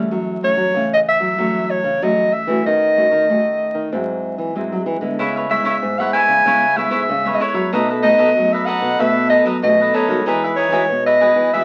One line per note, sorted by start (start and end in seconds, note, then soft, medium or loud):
0.00 0.37 E3 medium
0.00 0.37 A3 medium
0.00 0.37 C#4 medium
0.11 0.72 F#2 medium
0.11 0.52 F#3 medium
0.43 0.70 E3 medium
0.43 0.70 A3 medium
0.43 0.70 C#4 medium
0.43 0.88 C#5 loud
0.57 0.71 F#3 medium
0.74 1.15 C#3 medium
0.74 1.35 C#3 soft
0.74 1.34 E3 soft
0.74 1.34 A3 soft
0.74 1.34 C#4 medium
0.94 1.00 D#5 medium
1.09 1.72 E5 medium
1.20 1.35 F#3 medium
1.38 1.99 F#2 medium
1.38 1.97 E3 medium
1.38 1.79 F#3 medium
1.38 1.97 A3 medium
1.38 1.97 C#4 medium
1.70 2.05 C#5 medium
1.84 1.98 C#3 medium
2.02 2.63 C#3 medium
2.02 2.45 E3 medium
2.02 2.29 F#3 medium
2.02 2.45 A3 medium
2.02 2.45 C#4 medium
2.02 2.34 D#5 medium
2.33 2.65 E5 medium
2.47 2.62 E3 medium
2.47 2.92 A3 medium
2.47 2.92 C#4 medium
2.47 2.92 F#4 medium
2.66 3.07 D#3 medium
2.66 3.27 D#3 medium
2.66 3.89 D#5 medium
2.97 3.24 A3 medium
2.97 3.24 C#4 medium
2.97 3.24 F#4 medium
3.11 3.26 D#3 medium
3.29 3.90 D#3 soft
3.29 3.70 A3 medium
3.29 3.88 A3 soft
3.29 3.88 C#4 medium
3.29 3.88 F#4 medium
3.74 3.89 D#3 medium
3.92 4.53 G#2 medium
3.92 4.33 G#2 medium
3.92 4.51 F#3 soft
3.92 4.51 C4 medium
3.92 4.51 E4 medium
4.38 4.53 E3 medium
4.55 5.16 G#2 medium
4.55 4.98 F#3 medium
4.55 4.70 G#3 medium
4.55 4.99 C4 medium
4.55 4.99 E4 medium
4.72 4.86 F#3 medium
4.86 5.00 E3 medium
5.01 5.16 D3 medium
5.01 5.45 G#3 medium
5.01 5.45 B3 medium
5.01 5.45 E4 medium
5.19 5.60 C#3 medium
5.19 5.80 C#3 medium
5.19 5.34 E4 medium
5.19 5.34 B4 medium
5.19 5.34 C#5 medium
5.19 5.35 E5 medium
5.36 5.50 B4 soft
5.36 5.50 C#5 soft
5.36 5.50 E5 soft
5.49 5.93 G#3 soft
5.49 5.93 B3 soft
5.49 5.64 E4 soft
5.49 5.94 E4 medium
5.49 5.64 B4 soft
5.49 5.65 C#5 soft
5.49 6.01 E5 medium
5.49 5.65 E5 soft
5.64 5.79 C#3 medium
5.64 5.75 E4 medium
5.64 5.75 B4 medium
5.64 5.76 C#5 medium
5.64 5.76 E5 medium
5.82 6.43 G#2 soft
5.82 6.23 G#2 medium
5.99 6.41 G#3 medium
5.99 6.42 B3 medium
5.99 6.42 E4 medium
5.99 6.13 B4 soft
5.99 6.13 C#5 soft
5.99 6.13 E5 soft
5.99 6.13 F#5 medium
6.13 6.45 E4 medium
6.13 6.45 B4 medium
6.13 6.45 C#5 medium
6.13 6.45 E5 medium
6.13 6.79 G#5 loud
6.28 6.42 C#3 medium
6.45 6.86 C#3 medium
6.45 7.06 C#3 medium
6.45 6.65 G#3 medium
6.45 6.65 B3 medium
6.45 6.76 E4 medium
6.45 6.65 E4 medium
6.45 6.77 B4 medium
6.45 6.77 C#5 medium
6.45 6.77 E5 medium
6.76 7.07 G#3 medium
6.76 7.07 B3 medium
6.76 7.07 E4 medium
6.76 6.89 E4 soft
6.76 6.90 B4 soft
6.76 6.90 C#5 soft
6.76 7.35 E5 medium
6.76 6.91 E5 medium
6.90 7.06 G#2 medium
6.90 7.01 E4 medium
6.90 7.02 B4 medium
6.90 7.02 C#5 medium
6.90 7.02 E5 medium
7.08 7.69 G#2 medium
7.08 7.36 C#3 loud
7.25 7.68 G#3 medium
7.25 7.68 B3 medium
7.25 7.68 E4 medium
7.25 7.40 B4 soft
7.25 7.40 C#5 soft
7.25 7.40 E5 soft
7.34 7.44 D#5 medium
7.40 7.55 E4 medium
7.40 7.55 B4 medium
7.40 7.54 C#5 medium
7.40 7.74 C#5 medium
7.40 7.53 E5 medium
7.54 7.69 F#3 medium
7.54 7.72 B4 soft
7.54 7.71 C#5 soft
7.54 7.71 E5 medium
7.72 8.33 B2 medium
7.72 8.13 B2 medium
7.72 8.00 A3 medium
7.72 8.00 C#4 medium
7.72 7.88 D#4 medium
7.72 8.00 D#4 medium
7.72 7.88 A4 medium
7.72 7.88 B4 medium
7.72 7.87 D#5 medium
7.89 8.03 A4 soft
7.89 8.04 B4 soft
7.89 8.03 D#5 soft
8.03 8.31 A3 medium
8.03 8.31 C#4 medium
8.03 8.17 D#4 soft
8.03 8.31 D#4 medium
8.03 8.18 A4 soft
8.03 8.18 B4 soft
8.03 8.54 D#5 medium
8.03 8.18 D#5 medium
8.18 8.33 B2 medium
8.18 8.29 D#4 medium
8.18 8.29 A4 medium
8.18 8.29 B4 medium
8.18 8.29 D#5 medium
8.36 8.77 F#3 medium
8.36 8.97 F#3 medium
8.36 8.95 A3 soft
8.36 8.95 C#4 medium
8.36 8.96 D#4 medium
8.52 8.66 A4 soft
8.52 8.67 B4 soft
8.52 8.67 D#5 soft
8.52 8.67 E5 medium
8.66 8.98 D#4 medium
8.66 8.98 A4 medium
8.66 8.99 B4 medium
8.66 8.99 D#5 medium
8.66 9.01 F#5 medium
8.81 8.96 B2 medium
8.99 9.40 B2 loud
8.99 9.60 B2 medium
8.99 9.41 A3 medium
8.99 9.41 C#4 soft
8.99 9.30 A4 medium
8.99 9.30 B4 medium
8.99 9.29 E5 loud
9.30 9.44 D#4 medium
9.30 9.44 A4 soft
9.30 9.45 B4 medium
9.30 9.44 D#5 medium
9.30 9.46 D#5 medium
9.45 9.59 F#3 medium
9.45 9.56 D#4 medium
9.45 9.56 A4 medium
9.45 9.56 B4 medium
9.45 9.56 D#5 medium
9.62 9.90 B2 loud
9.62 10.24 F#3 medium
9.62 10.06 A3 medium
9.62 10.06 C#4 medium
9.62 10.06 D#4 medium
9.62 9.96 D#5 medium
9.80 9.93 A4 soft
9.80 9.93 B4 soft
9.80 9.94 D#5 medium
9.94 10.09 D#4 medium
9.94 10.09 A4 medium
9.94 10.08 B4 medium
9.94 10.27 C#5 medium
9.94 10.07 D#5 medium
10.08 10.23 D#3 loud
10.08 10.52 G#3 medium
10.08 10.52 D#4 medium
10.08 10.53 F#4 medium
10.08 10.25 A4 soft
10.08 10.25 B4 soft
10.08 10.24 D#5 medium
10.26 10.67 E3 medium
10.26 10.87 E3 medium
10.26 10.41 D#4 medium
10.26 10.41 G#4 medium
10.26 10.42 B4 medium
10.26 10.42 E5 medium
10.44 10.56 G#4 soft
10.44 10.57 B4 soft
10.44 10.58 E5 soft
10.56 10.71 D#4 medium
10.56 10.71 G#4 soft
10.56 10.71 B4 soft
10.56 11.01 C#5 medium
10.56 10.72 E5 medium
10.71 10.86 E3 medium
10.71 11.15 G#3 medium
10.71 10.82 D#4 medium
10.71 11.16 D#4 medium
10.71 11.16 F#4 medium
10.71 10.82 G#4 medium
10.71 10.82 B4 medium
10.71 10.83 E5 medium
10.89 11.30 B2 medium
10.89 11.50 B2 medium
11.06 11.19 G#4 soft
11.06 11.20 B4 soft
11.06 11.50 D#5 medium
11.06 11.21 E5 medium
11.21 11.40 G#3 medium
11.21 11.40 D#4 medium
11.21 11.41 F#4 medium
11.21 11.52 G#4 medium
11.21 11.52 B4 medium
11.35 11.50 E3 medium
11.53 11.64 E3 medium
11.53 11.64 G#3 medium
11.53 11.64 D#4 medium
11.53 11.64 F#4 medium
11.53 11.64 G#4 medium
11.53 11.64 B4 medium
11.53 11.64 E5 loud
11.53 11.64 E5 medium